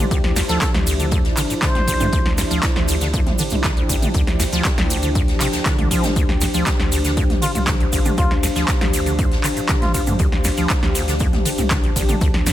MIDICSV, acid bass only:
0, 0, Header, 1, 2, 480
1, 0, Start_track
1, 0, Key_signature, -1, "minor"
1, 0, Tempo, 504202
1, 106, Time_signature, 4, 2, 24, 8
1, 11927, End_track
2, 0, Start_track
2, 0, Title_t, "Acid bass"
2, 0, Program_c, 0, 38
2, 106, Note_on_c, 0, 38, 103
2, 173, Note_off_c, 0, 38, 0
2, 347, Note_on_c, 0, 41, 103
2, 387, Note_off_c, 0, 41, 0
2, 468, Note_on_c, 0, 53, 104
2, 565, Note_off_c, 0, 53, 0
2, 707, Note_on_c, 0, 38, 74
2, 772, Note_off_c, 0, 38, 0
2, 825, Note_on_c, 0, 38, 110
2, 893, Note_off_c, 0, 38, 0
2, 948, Note_on_c, 0, 50, 82
2, 1013, Note_off_c, 0, 50, 0
2, 1065, Note_on_c, 0, 41, 100
2, 1133, Note_off_c, 0, 41, 0
2, 1306, Note_on_c, 0, 50, 101
2, 1346, Note_off_c, 0, 50, 0
2, 1427, Note_on_c, 0, 45, 75
2, 1466, Note_off_c, 0, 45, 0
2, 1545, Note_on_c, 0, 50, 82
2, 1612, Note_off_c, 0, 50, 0
2, 1667, Note_on_c, 0, 38, 75
2, 1732, Note_off_c, 0, 38, 0
2, 1783, Note_on_c, 0, 38, 101
2, 1852, Note_off_c, 0, 38, 0
2, 1905, Note_on_c, 0, 50, 77
2, 1971, Note_off_c, 0, 50, 0
2, 2023, Note_on_c, 0, 38, 105
2, 2091, Note_off_c, 0, 38, 0
2, 2265, Note_on_c, 0, 41, 100
2, 2306, Note_off_c, 0, 41, 0
2, 2387, Note_on_c, 0, 53, 100
2, 2485, Note_off_c, 0, 53, 0
2, 2628, Note_on_c, 0, 38, 78
2, 2693, Note_off_c, 0, 38, 0
2, 2746, Note_on_c, 0, 38, 109
2, 2813, Note_off_c, 0, 38, 0
2, 2868, Note_on_c, 0, 50, 77
2, 2933, Note_off_c, 0, 50, 0
2, 2984, Note_on_c, 0, 41, 105
2, 3052, Note_off_c, 0, 41, 0
2, 3225, Note_on_c, 0, 50, 100
2, 3265, Note_off_c, 0, 50, 0
2, 3348, Note_on_c, 0, 45, 77
2, 3387, Note_off_c, 0, 45, 0
2, 3466, Note_on_c, 0, 50, 83
2, 3533, Note_off_c, 0, 50, 0
2, 3588, Note_on_c, 0, 38, 79
2, 3653, Note_off_c, 0, 38, 0
2, 3706, Note_on_c, 0, 38, 103
2, 3773, Note_off_c, 0, 38, 0
2, 3828, Note_on_c, 0, 50, 78
2, 3893, Note_off_c, 0, 50, 0
2, 3946, Note_on_c, 0, 38, 105
2, 4013, Note_off_c, 0, 38, 0
2, 4187, Note_on_c, 0, 41, 107
2, 4227, Note_off_c, 0, 41, 0
2, 4309, Note_on_c, 0, 53, 105
2, 4406, Note_off_c, 0, 53, 0
2, 4549, Note_on_c, 0, 38, 74
2, 4613, Note_off_c, 0, 38, 0
2, 4667, Note_on_c, 0, 38, 108
2, 4733, Note_off_c, 0, 38, 0
2, 4788, Note_on_c, 0, 50, 80
2, 4853, Note_off_c, 0, 50, 0
2, 4906, Note_on_c, 0, 41, 99
2, 4973, Note_off_c, 0, 41, 0
2, 5148, Note_on_c, 0, 48, 101
2, 5214, Note_off_c, 0, 48, 0
2, 5268, Note_on_c, 0, 38, 81
2, 5333, Note_off_c, 0, 38, 0
2, 5387, Note_on_c, 0, 50, 84
2, 5487, Note_off_c, 0, 50, 0
2, 5507, Note_on_c, 0, 50, 77
2, 5605, Note_off_c, 0, 50, 0
2, 5625, Note_on_c, 0, 53, 100
2, 5747, Note_on_c, 0, 50, 76
2, 5762, Note_off_c, 0, 53, 0
2, 5812, Note_off_c, 0, 50, 0
2, 5867, Note_on_c, 0, 38, 100
2, 5934, Note_off_c, 0, 38, 0
2, 6106, Note_on_c, 0, 41, 102
2, 6146, Note_off_c, 0, 41, 0
2, 6229, Note_on_c, 0, 53, 100
2, 6326, Note_off_c, 0, 53, 0
2, 6470, Note_on_c, 0, 38, 78
2, 6534, Note_off_c, 0, 38, 0
2, 6587, Note_on_c, 0, 38, 109
2, 6654, Note_off_c, 0, 38, 0
2, 6710, Note_on_c, 0, 50, 75
2, 6774, Note_off_c, 0, 50, 0
2, 6828, Note_on_c, 0, 41, 102
2, 6894, Note_off_c, 0, 41, 0
2, 7066, Note_on_c, 0, 50, 103
2, 7106, Note_off_c, 0, 50, 0
2, 7188, Note_on_c, 0, 45, 80
2, 7227, Note_off_c, 0, 45, 0
2, 7306, Note_on_c, 0, 50, 82
2, 7373, Note_off_c, 0, 50, 0
2, 7429, Note_on_c, 0, 38, 77
2, 7493, Note_off_c, 0, 38, 0
2, 7546, Note_on_c, 0, 38, 101
2, 7613, Note_off_c, 0, 38, 0
2, 7667, Note_on_c, 0, 50, 77
2, 7732, Note_off_c, 0, 50, 0
2, 7785, Note_on_c, 0, 38, 102
2, 7853, Note_off_c, 0, 38, 0
2, 8026, Note_on_c, 0, 41, 102
2, 8066, Note_off_c, 0, 41, 0
2, 8148, Note_on_c, 0, 53, 101
2, 8245, Note_off_c, 0, 53, 0
2, 8388, Note_on_c, 0, 38, 75
2, 8453, Note_off_c, 0, 38, 0
2, 8505, Note_on_c, 0, 38, 105
2, 8573, Note_off_c, 0, 38, 0
2, 8628, Note_on_c, 0, 50, 77
2, 8693, Note_off_c, 0, 50, 0
2, 8746, Note_on_c, 0, 41, 103
2, 8813, Note_off_c, 0, 41, 0
2, 8985, Note_on_c, 0, 50, 104
2, 9026, Note_off_c, 0, 50, 0
2, 9106, Note_on_c, 0, 45, 77
2, 9146, Note_off_c, 0, 45, 0
2, 9225, Note_on_c, 0, 50, 82
2, 9292, Note_off_c, 0, 50, 0
2, 9347, Note_on_c, 0, 38, 76
2, 9412, Note_off_c, 0, 38, 0
2, 9464, Note_on_c, 0, 38, 100
2, 9532, Note_off_c, 0, 38, 0
2, 9588, Note_on_c, 0, 50, 77
2, 9653, Note_off_c, 0, 50, 0
2, 9705, Note_on_c, 0, 38, 101
2, 9772, Note_off_c, 0, 38, 0
2, 9946, Note_on_c, 0, 41, 107
2, 9986, Note_off_c, 0, 41, 0
2, 10068, Note_on_c, 0, 53, 103
2, 10165, Note_off_c, 0, 53, 0
2, 10306, Note_on_c, 0, 38, 75
2, 10372, Note_off_c, 0, 38, 0
2, 10425, Note_on_c, 0, 38, 115
2, 10492, Note_off_c, 0, 38, 0
2, 10547, Note_on_c, 0, 50, 77
2, 10612, Note_off_c, 0, 50, 0
2, 10666, Note_on_c, 0, 41, 101
2, 10733, Note_off_c, 0, 41, 0
2, 10904, Note_on_c, 0, 50, 106
2, 10945, Note_off_c, 0, 50, 0
2, 11027, Note_on_c, 0, 45, 81
2, 11067, Note_off_c, 0, 45, 0
2, 11146, Note_on_c, 0, 50, 82
2, 11213, Note_off_c, 0, 50, 0
2, 11268, Note_on_c, 0, 38, 79
2, 11333, Note_off_c, 0, 38, 0
2, 11387, Note_on_c, 0, 38, 103
2, 11453, Note_off_c, 0, 38, 0
2, 11507, Note_on_c, 0, 50, 78
2, 11573, Note_off_c, 0, 50, 0
2, 11625, Note_on_c, 0, 38, 103
2, 11692, Note_off_c, 0, 38, 0
2, 11864, Note_on_c, 0, 41, 106
2, 11905, Note_off_c, 0, 41, 0
2, 11927, End_track
0, 0, End_of_file